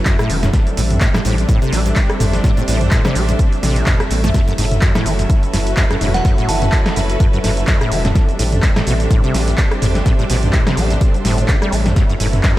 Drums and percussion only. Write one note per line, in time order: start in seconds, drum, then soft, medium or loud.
0.05 kick loud
0.05 clap loud
0.05 closed hi-hat medium
0.05 shaker soft
0.19 cross-stick medium
0.19 closed hi-hat soft
0.19 shaker soft
0.30 open hi-hat medium
0.30 shaker medium
0.43 snare soft
0.43 closed hi-hat medium
0.43 mid tom medium
0.43 shaker soft
0.53 kick loud
0.53 snare soft
0.53 closed hi-hat medium
0.53 shaker soft
0.67 closed hi-hat soft
0.67 shaker soft
0.77 open hi-hat loud
0.77 shaker medium
0.91 closed hi-hat medium
0.91 mid tom medium
0.91 shaker soft
1.01 kick loud
1.01 clap loud
1.01 closed hi-hat medium
1.01 shaker soft
1.14 cross-stick medium
1.14 snare medium
1.14 closed hi-hat soft
1.14 shaker soft
1.25 open hi-hat medium
1.25 shaker medium
1.38 closed hi-hat medium
1.38 shaker soft
1.49 kick loud
1.49 closed hi-hat medium
1.49 shaker soft
1.62 closed hi-hat soft
1.62 shaker soft
1.73 snare soft
1.73 open hi-hat loud
1.73 shaker medium
1.86 closed hi-hat medium
1.86 shaker soft
1.96 kick loud
1.96 clap loud
1.96 closed hi-hat medium
1.96 shaker soft
2.10 cross-stick medium
2.10 closed hi-hat soft
2.10 shaker soft
2.20 mid tom medium
2.20 open hi-hat medium
2.20 shaker medium
2.33 snare soft
2.33 closed hi-hat medium
2.33 shaker soft
2.44 kick loud
2.44 snare soft
2.44 closed hi-hat medium
2.44 shaker soft
2.57 closed hi-hat soft
2.57 shaker soft
2.68 open hi-hat loud
2.68 shaker medium
2.81 closed hi-hat medium
2.81 mid tom medium
2.81 shaker soft
2.91 kick loud
2.91 clap loud
2.91 closed hi-hat medium
2.91 shaker soft
3.05 cross-stick medium
3.05 snare medium
3.05 closed hi-hat soft
3.05 shaker soft
3.15 open hi-hat medium
3.15 shaker medium
3.29 closed hi-hat medium
3.29 shaker soft
3.39 kick loud
3.39 closed hi-hat medium
3.39 shaker soft
3.52 closed hi-hat soft
3.52 shaker soft
3.63 snare soft
3.63 open hi-hat loud
3.63 shaker medium
3.76 closed hi-hat medium
3.76 shaker soft
3.86 kick loud
3.86 clap loud
3.86 closed hi-hat medium
3.86 mid tom medium
3.86 shaker soft
4.00 cross-stick medium
4.00 closed hi-hat soft
4.00 shaker soft
4.11 open hi-hat medium
4.11 shaker medium
4.24 snare soft
4.24 closed hi-hat medium
4.24 mid tom medium
4.24 shaker soft
4.34 kick loud
4.34 snare soft
4.34 closed hi-hat medium
4.34 shaker soft
4.48 closed hi-hat soft
4.48 shaker soft
4.58 open hi-hat loud
4.58 shaker medium
4.71 closed hi-hat medium
4.71 mid tom medium
4.71 shaker soft
4.81 kick loud
4.81 clap loud
4.81 closed hi-hat medium
4.81 shaker soft
4.95 cross-stick medium
4.95 snare medium
4.95 closed hi-hat soft
4.95 shaker soft
5.06 open hi-hat medium
5.06 shaker medium
5.19 closed hi-hat medium
5.19 shaker soft
5.30 kick loud
5.30 closed hi-hat medium
5.30 shaker soft
5.43 closed hi-hat soft
5.43 shaker soft
5.54 snare soft
5.54 open hi-hat loud
5.54 shaker medium
5.67 closed hi-hat medium
5.67 shaker soft
5.77 kick loud
5.77 clap loud
5.77 closed hi-hat medium
5.77 shaker soft
5.91 cross-stick medium
5.91 closed hi-hat soft
5.91 shaker soft
6.01 mid tom medium
6.01 open hi-hat medium
6.01 shaker medium
6.14 snare soft
6.14 closed hi-hat medium
6.14 shaker soft
6.25 kick loud
6.25 snare soft
6.25 closed hi-hat medium
6.25 shaker soft
6.38 closed hi-hat soft
6.38 shaker soft
6.49 open hi-hat loud
6.49 shaker medium
6.62 closed hi-hat medium
6.62 mid tom loud
6.62 shaker soft
6.72 kick loud
6.72 clap loud
6.72 closed hi-hat medium
6.72 shaker soft
6.86 cross-stick medium
6.86 snare medium
6.86 closed hi-hat soft
6.86 shaker soft
6.96 open hi-hat medium
6.96 shaker medium
7.10 closed hi-hat medium
7.10 shaker soft
7.20 kick loud
7.20 closed hi-hat medium
7.20 shaker soft
7.33 closed hi-hat soft
7.33 shaker soft
7.44 snare soft
7.44 open hi-hat loud
7.44 shaker medium
7.57 closed hi-hat medium
7.57 shaker soft
7.67 kick loud
7.67 clap loud
7.67 closed hi-hat medium
7.67 shaker soft
7.81 cross-stick medium
7.81 closed hi-hat soft
7.81 shaker soft
7.92 open hi-hat loud
7.92 shaker medium
8.05 snare soft
8.05 closed hi-hat medium
8.05 mid tom medium
8.05 shaker soft
8.15 kick loud
8.15 snare soft
8.15 closed hi-hat medium
8.15 shaker soft
8.29 closed hi-hat soft
8.29 shaker soft
8.39 open hi-hat loud
8.39 shaker medium
8.52 closed hi-hat medium
8.52 mid tom loud
8.52 shaker soft
8.62 kick loud
8.62 clap loud
8.62 closed hi-hat medium
8.62 shaker soft
8.76 cross-stick medium
8.76 snare medium
8.76 closed hi-hat soft
8.76 shaker soft
8.87 open hi-hat medium
8.87 shaker medium
9.00 closed hi-hat medium
9.00 shaker soft
9.11 kick loud
9.11 closed hi-hat medium
9.11 shaker soft
9.24 closed hi-hat soft
9.24 shaker soft
9.34 snare soft
9.34 open hi-hat loud
9.34 shaker medium
9.48 closed hi-hat medium
9.48 shaker soft
9.58 kick loud
9.58 clap loud
9.58 closed hi-hat medium
9.58 shaker soft
9.71 cross-stick medium
9.71 closed hi-hat soft
9.71 shaker soft
9.82 mid tom loud
9.82 open hi-hat loud
9.82 shaker medium
9.95 snare soft
9.95 closed hi-hat medium
9.95 shaker soft
10.06 kick loud
10.06 snare soft
10.06 closed hi-hat medium
10.06 shaker soft
10.19 closed hi-hat soft
10.19 shaker soft
10.30 open hi-hat loud
10.30 shaker medium
10.43 closed hi-hat medium
10.43 mid tom medium
10.43 shaker soft
10.53 kick loud
10.53 clap loud
10.53 closed hi-hat soft
10.53 shaker soft
10.67 cross-stick medium
10.67 snare medium
10.67 closed hi-hat soft
10.67 shaker soft
10.77 open hi-hat medium
10.77 shaker medium
10.91 closed hi-hat medium
10.91 shaker soft
11.01 kick loud
11.01 closed hi-hat medium
11.01 shaker soft
11.14 closed hi-hat soft
11.14 shaker soft
11.25 snare soft
11.25 open hi-hat loud
11.25 shaker medium
11.38 closed hi-hat medium
11.38 shaker soft
11.48 kick loud
11.48 clap loud
11.48 closed hi-hat medium
11.48 shaker soft
11.62 cross-stick medium
11.62 closed hi-hat soft
11.62 shaker soft
11.72 open hi-hat loud
11.72 shaker medium
11.86 snare soft
11.86 closed hi-hat medium
11.86 mid tom medium
11.86 shaker soft
11.96 kick loud
11.96 snare soft
11.96 closed hi-hat medium
11.96 shaker soft
12.10 closed hi-hat soft
12.10 shaker soft
12.20 open hi-hat loud
12.20 shaker medium
12.33 closed hi-hat soft
12.33 mid tom medium
12.33 shaker soft
12.43 kick loud
12.43 clap loud
12.43 closed hi-hat medium
12.43 shaker soft